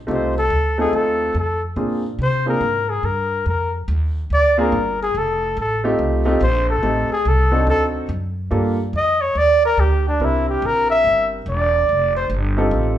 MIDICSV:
0, 0, Header, 1, 5, 480
1, 0, Start_track
1, 0, Tempo, 421348
1, 95, Time_signature, 4, 2, 24, 8
1, 14787, End_track
2, 0, Start_track
2, 0, Title_t, "Flugelhorn"
2, 0, Program_c, 0, 56
2, 140, Note_on_c, 0, 72, 69
2, 410, Note_off_c, 0, 72, 0
2, 434, Note_on_c, 0, 69, 95
2, 869, Note_off_c, 0, 69, 0
2, 914, Note_on_c, 0, 68, 88
2, 1083, Note_on_c, 0, 69, 79
2, 1101, Note_off_c, 0, 68, 0
2, 1550, Note_off_c, 0, 69, 0
2, 1582, Note_on_c, 0, 69, 80
2, 1852, Note_off_c, 0, 69, 0
2, 2533, Note_on_c, 0, 72, 96
2, 2808, Note_off_c, 0, 72, 0
2, 2830, Note_on_c, 0, 70, 85
2, 3298, Note_on_c, 0, 68, 79
2, 3315, Note_off_c, 0, 70, 0
2, 3479, Note_on_c, 0, 70, 81
2, 3496, Note_off_c, 0, 68, 0
2, 3948, Note_off_c, 0, 70, 0
2, 3971, Note_on_c, 0, 70, 77
2, 4247, Note_off_c, 0, 70, 0
2, 4940, Note_on_c, 0, 74, 109
2, 5212, Note_off_c, 0, 74, 0
2, 5239, Note_on_c, 0, 70, 83
2, 5673, Note_off_c, 0, 70, 0
2, 5722, Note_on_c, 0, 68, 90
2, 5899, Note_on_c, 0, 69, 78
2, 5916, Note_off_c, 0, 68, 0
2, 6360, Note_off_c, 0, 69, 0
2, 6376, Note_on_c, 0, 69, 84
2, 6651, Note_off_c, 0, 69, 0
2, 7326, Note_on_c, 0, 72, 93
2, 7606, Note_off_c, 0, 72, 0
2, 7629, Note_on_c, 0, 69, 83
2, 8069, Note_off_c, 0, 69, 0
2, 8112, Note_on_c, 0, 68, 93
2, 8298, Note_on_c, 0, 69, 87
2, 8315, Note_off_c, 0, 68, 0
2, 8759, Note_off_c, 0, 69, 0
2, 8770, Note_on_c, 0, 69, 89
2, 8949, Note_off_c, 0, 69, 0
2, 10212, Note_on_c, 0, 75, 95
2, 10494, Note_on_c, 0, 73, 91
2, 10511, Note_off_c, 0, 75, 0
2, 10686, Note_on_c, 0, 74, 107
2, 10703, Note_off_c, 0, 73, 0
2, 10985, Note_off_c, 0, 74, 0
2, 10997, Note_on_c, 0, 70, 104
2, 11166, Note_on_c, 0, 67, 90
2, 11183, Note_off_c, 0, 70, 0
2, 11465, Note_off_c, 0, 67, 0
2, 11487, Note_on_c, 0, 62, 81
2, 11675, Note_on_c, 0, 64, 89
2, 11692, Note_off_c, 0, 62, 0
2, 11945, Note_off_c, 0, 64, 0
2, 11952, Note_on_c, 0, 67, 83
2, 12144, Note_on_c, 0, 70, 96
2, 12161, Note_off_c, 0, 67, 0
2, 12411, Note_off_c, 0, 70, 0
2, 12418, Note_on_c, 0, 76, 98
2, 12859, Note_off_c, 0, 76, 0
2, 13090, Note_on_c, 0, 74, 92
2, 13818, Note_off_c, 0, 74, 0
2, 13858, Note_on_c, 0, 72, 86
2, 14007, Note_off_c, 0, 72, 0
2, 14787, End_track
3, 0, Start_track
3, 0, Title_t, "Grand piano"
3, 0, Program_c, 1, 0
3, 78, Note_on_c, 1, 57, 67
3, 82, Note_on_c, 1, 60, 59
3, 91, Note_on_c, 1, 63, 63
3, 91, Note_on_c, 1, 65, 59
3, 92, Note_on_c, 1, 67, 64
3, 369, Note_off_c, 1, 57, 0
3, 370, Note_off_c, 1, 60, 0
3, 375, Note_off_c, 1, 63, 0
3, 375, Note_off_c, 1, 65, 0
3, 375, Note_off_c, 1, 67, 0
3, 889, Note_on_c, 1, 57, 72
3, 890, Note_on_c, 1, 63, 61
3, 892, Note_on_c, 1, 60, 64
3, 892, Note_on_c, 1, 65, 61
3, 898, Note_on_c, 1, 69, 73
3, 1503, Note_off_c, 1, 57, 0
3, 1503, Note_off_c, 1, 63, 0
3, 1504, Note_off_c, 1, 60, 0
3, 1504, Note_off_c, 1, 65, 0
3, 1507, Note_off_c, 1, 69, 0
3, 2010, Note_on_c, 1, 58, 56
3, 2010, Note_on_c, 1, 60, 54
3, 2011, Note_on_c, 1, 62, 52
3, 2015, Note_on_c, 1, 68, 63
3, 2016, Note_on_c, 1, 65, 53
3, 2295, Note_off_c, 1, 58, 0
3, 2295, Note_off_c, 1, 60, 0
3, 2296, Note_off_c, 1, 62, 0
3, 2298, Note_off_c, 1, 65, 0
3, 2298, Note_off_c, 1, 68, 0
3, 2801, Note_on_c, 1, 58, 61
3, 2805, Note_on_c, 1, 60, 55
3, 2809, Note_on_c, 1, 62, 59
3, 2810, Note_on_c, 1, 65, 57
3, 2811, Note_on_c, 1, 68, 70
3, 2956, Note_off_c, 1, 58, 0
3, 2958, Note_off_c, 1, 60, 0
3, 2959, Note_off_c, 1, 62, 0
3, 2960, Note_off_c, 1, 65, 0
3, 2961, Note_off_c, 1, 68, 0
3, 5212, Note_on_c, 1, 60, 68
3, 5215, Note_on_c, 1, 58, 81
3, 5216, Note_on_c, 1, 62, 73
3, 5219, Note_on_c, 1, 65, 71
3, 5223, Note_on_c, 1, 68, 90
3, 5363, Note_off_c, 1, 60, 0
3, 5364, Note_off_c, 1, 58, 0
3, 5364, Note_off_c, 1, 62, 0
3, 5366, Note_off_c, 1, 65, 0
3, 5368, Note_off_c, 1, 68, 0
3, 6652, Note_on_c, 1, 57, 74
3, 6654, Note_on_c, 1, 60, 68
3, 6657, Note_on_c, 1, 63, 66
3, 6661, Note_on_c, 1, 65, 67
3, 6662, Note_on_c, 1, 67, 82
3, 7102, Note_off_c, 1, 57, 0
3, 7103, Note_off_c, 1, 60, 0
3, 7104, Note_off_c, 1, 63, 0
3, 7106, Note_off_c, 1, 65, 0
3, 7107, Note_off_c, 1, 67, 0
3, 7122, Note_on_c, 1, 57, 71
3, 7126, Note_on_c, 1, 60, 74
3, 7126, Note_on_c, 1, 63, 73
3, 7128, Note_on_c, 1, 65, 73
3, 7133, Note_on_c, 1, 67, 84
3, 7278, Note_off_c, 1, 57, 0
3, 7280, Note_off_c, 1, 60, 0
3, 7280, Note_off_c, 1, 63, 0
3, 7281, Note_off_c, 1, 65, 0
3, 7284, Note_off_c, 1, 67, 0
3, 7775, Note_on_c, 1, 57, 65
3, 7776, Note_on_c, 1, 60, 58
3, 7778, Note_on_c, 1, 63, 57
3, 7780, Note_on_c, 1, 67, 54
3, 7784, Note_on_c, 1, 69, 64
3, 8060, Note_off_c, 1, 57, 0
3, 8061, Note_off_c, 1, 60, 0
3, 8062, Note_off_c, 1, 63, 0
3, 8062, Note_off_c, 1, 67, 0
3, 8064, Note_off_c, 1, 69, 0
3, 8561, Note_on_c, 1, 62, 65
3, 8562, Note_on_c, 1, 60, 68
3, 8565, Note_on_c, 1, 63, 69
3, 8566, Note_on_c, 1, 66, 62
3, 8566, Note_on_c, 1, 69, 69
3, 9181, Note_off_c, 1, 60, 0
3, 9181, Note_off_c, 1, 62, 0
3, 9183, Note_off_c, 1, 63, 0
3, 9183, Note_off_c, 1, 66, 0
3, 9183, Note_off_c, 1, 69, 0
3, 9691, Note_on_c, 1, 58, 69
3, 9691, Note_on_c, 1, 62, 57
3, 9691, Note_on_c, 1, 65, 65
3, 9695, Note_on_c, 1, 67, 62
3, 9699, Note_on_c, 1, 69, 68
3, 9977, Note_off_c, 1, 58, 0
3, 9977, Note_off_c, 1, 62, 0
3, 9977, Note_off_c, 1, 65, 0
3, 9980, Note_off_c, 1, 67, 0
3, 9981, Note_off_c, 1, 69, 0
3, 11625, Note_on_c, 1, 60, 59
3, 11627, Note_on_c, 1, 62, 55
3, 11630, Note_on_c, 1, 64, 50
3, 11630, Note_on_c, 1, 67, 49
3, 11635, Note_on_c, 1, 70, 68
3, 12959, Note_off_c, 1, 60, 0
3, 12960, Note_off_c, 1, 62, 0
3, 12961, Note_off_c, 1, 64, 0
3, 12961, Note_off_c, 1, 67, 0
3, 12964, Note_off_c, 1, 70, 0
3, 14323, Note_on_c, 1, 63, 64
3, 14325, Note_on_c, 1, 60, 67
3, 14328, Note_on_c, 1, 67, 68
3, 14332, Note_on_c, 1, 65, 71
3, 14332, Note_on_c, 1, 69, 80
3, 14772, Note_off_c, 1, 60, 0
3, 14772, Note_off_c, 1, 63, 0
3, 14774, Note_off_c, 1, 67, 0
3, 14776, Note_off_c, 1, 65, 0
3, 14776, Note_off_c, 1, 69, 0
3, 14787, End_track
4, 0, Start_track
4, 0, Title_t, "Upright bass"
4, 0, Program_c, 2, 32
4, 94, Note_on_c, 2, 36, 79
4, 560, Note_off_c, 2, 36, 0
4, 572, Note_on_c, 2, 38, 91
4, 1039, Note_off_c, 2, 38, 0
4, 1059, Note_on_c, 2, 39, 77
4, 1523, Note_off_c, 2, 39, 0
4, 1532, Note_on_c, 2, 41, 79
4, 2000, Note_off_c, 2, 41, 0
4, 2007, Note_on_c, 2, 46, 78
4, 2478, Note_off_c, 2, 46, 0
4, 2490, Note_on_c, 2, 48, 84
4, 2959, Note_off_c, 2, 48, 0
4, 2971, Note_on_c, 2, 44, 84
4, 3440, Note_off_c, 2, 44, 0
4, 3453, Note_on_c, 2, 43, 78
4, 3921, Note_off_c, 2, 43, 0
4, 3939, Note_on_c, 2, 41, 80
4, 4404, Note_off_c, 2, 41, 0
4, 4419, Note_on_c, 2, 39, 91
4, 4885, Note_off_c, 2, 39, 0
4, 4901, Note_on_c, 2, 38, 82
4, 5366, Note_off_c, 2, 38, 0
4, 5378, Note_on_c, 2, 31, 85
4, 5845, Note_off_c, 2, 31, 0
4, 5862, Note_on_c, 2, 29, 81
4, 6327, Note_off_c, 2, 29, 0
4, 6342, Note_on_c, 2, 33, 90
4, 6807, Note_off_c, 2, 33, 0
4, 6820, Note_on_c, 2, 36, 80
4, 7286, Note_off_c, 2, 36, 0
4, 7299, Note_on_c, 2, 34, 92
4, 7765, Note_off_c, 2, 34, 0
4, 7777, Note_on_c, 2, 33, 81
4, 8070, Note_off_c, 2, 33, 0
4, 8262, Note_on_c, 2, 36, 84
4, 8727, Note_off_c, 2, 36, 0
4, 8735, Note_on_c, 2, 38, 85
4, 9203, Note_off_c, 2, 38, 0
4, 9214, Note_on_c, 2, 42, 88
4, 9682, Note_off_c, 2, 42, 0
4, 9698, Note_on_c, 2, 43, 78
4, 10164, Note_off_c, 2, 43, 0
4, 10174, Note_on_c, 2, 41, 81
4, 10642, Note_off_c, 2, 41, 0
4, 10655, Note_on_c, 2, 39, 82
4, 11122, Note_off_c, 2, 39, 0
4, 11134, Note_on_c, 2, 38, 87
4, 11601, Note_off_c, 2, 38, 0
4, 11618, Note_on_c, 2, 36, 76
4, 12083, Note_off_c, 2, 36, 0
4, 12099, Note_on_c, 2, 34, 90
4, 12563, Note_off_c, 2, 34, 0
4, 12582, Note_on_c, 2, 31, 84
4, 13044, Note_off_c, 2, 31, 0
4, 13055, Note_on_c, 2, 28, 88
4, 13519, Note_off_c, 2, 28, 0
4, 13545, Note_on_c, 2, 29, 82
4, 14002, Note_off_c, 2, 29, 0
4, 14009, Note_on_c, 2, 31, 90
4, 14475, Note_off_c, 2, 31, 0
4, 14482, Note_on_c, 2, 33, 89
4, 14787, Note_off_c, 2, 33, 0
4, 14787, End_track
5, 0, Start_track
5, 0, Title_t, "Muted upright bass strokes"
5, 8085, Note_on_c, 9, 29, 37
5, 8199, Note_off_c, 9, 29, 0
5, 14787, End_track
0, 0, End_of_file